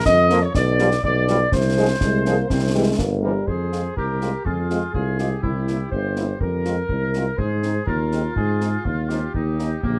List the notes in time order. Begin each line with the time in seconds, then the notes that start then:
0.06 F2 D#5, concert bass drum, snare
0.30 F3 A#3 F4, snare
0.43 C#5
0.55 B1 D5, concert bass drum, snare
0.79 F3 G3 G4, snare
0.92 snare
1.03 B1 D5, concert bass drum
1.28 F3 G3 G4, snare
1.52 C2 C5, concert bass drum, snare
1.77 F3 G#3 C4 G#4
2.01 C2 G#3, concert bass drum, snare
2.26 F3 G#3 A#3 C4 G#4, snare
2.50 C2 C4, concert bass drum, snare
2.74 E3 G3 G#3 C4 G4
2.99 G1 A#3, concert bass drum, snare
3.23 E3 G3 C4 G4 A#4
3.47 F2 G#4 C5, concert bass drum
3.72 G#3 C4 F4, snare
3.97 C2 G4 A#4, concert bass drum
4.21 G#3 C4 F4, snare
4.45 F2 F4 G#4, concert bass drum
4.70 G#3 C4 F4, snare
4.93 C2 F4 G#4, concert bass drum
5.19 G#3 C4 F4 G4, snare
5.42 C2 E4, concert bass drum
5.67 A#3 C4 E4, snare
5.91 G1 C5, concert bass drum
6.16 A#3 C4 E4, snare
6.40 F2 A#4, concert bass drum
6.65 G#3 C4 F4, snare
6.89 C2, concert bass drum
7.14 G#3 C4 F4 A#4, snare
7.38 G#2 G#4 C5, concert bass drum
7.63 G#3 C4 D#4, snare
7.86 D#2 F4 A#4, concert bass drum
8.12 G#3 C4 D#4, snare
8.36 G#2 G#4, concert bass drum
8.61 G#3 C4 D#4, snare
8.85 D#2 F4, concert bass drum
9.09 G#3 C4 D#4 G4, snare
9.34 D#2 D#4, concert bass drum
9.59 A#3 C#4 D#4, snare
9.83 A#1 A#3, concert bass drum